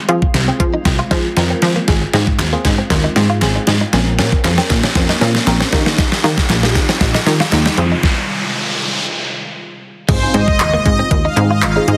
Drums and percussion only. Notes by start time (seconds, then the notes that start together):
0.09 closed hi-hat
0.22 kick
0.34 snare, closed hi-hat
0.60 kick, closed hi-hat
0.85 kick, snare, closed hi-hat
1.11 kick, snare, closed hi-hat
1.37 snare, closed hi-hat
1.62 snare, closed hi-hat
1.88 kick, snare, closed hi-hat
2.13 snare, closed hi-hat
2.27 kick
2.39 snare, clap, closed hi-hat
2.65 kick, snare, closed hi-hat
2.90 kick, snare, closed hi-hat
3.16 snare, closed hi-hat
3.42 snare, clap, closed hi-hat
3.67 snare, closed hi-hat
3.93 snare, closed hi-hat
4.19 snare, closed hi-hat
4.32 kick
4.44 snare, clap, closed hi-hat
4.58 snare
4.70 kick, snare, closed hi-hat
4.83 snare
4.95 kick, snare, closed hi-hat
5.09 snare
5.21 snare, closed hi-hat
5.35 snare
5.47 snare, clap, closed hi-hat
5.61 snare
5.72 kick, snare, closed hi-hat
5.86 snare
5.98 kick, snare, closed hi-hat
6.12 snare
6.24 snare, closed hi-hat
6.38 kick, snare
6.49 snare, clap, closed hi-hat
6.63 snare
6.75 kick, snare, closed hi-hat
6.89 snare
7.01 kick, snare, closed hi-hat
7.15 snare
7.27 snare, closed hi-hat
7.40 snare
7.52 snare, clap, closed hi-hat
7.66 snare
7.77 closed hi-hat
8.03 kick, snare
10.09 kick, closed hi-hat, crash
10.34 closed hi-hat
10.48 kick
10.60 clap, closed hi-hat
10.86 kick, closed hi-hat
11.11 kick, closed hi-hat
11.37 clap, closed hi-hat
11.62 clap, closed hi-hat
11.88 closed hi-hat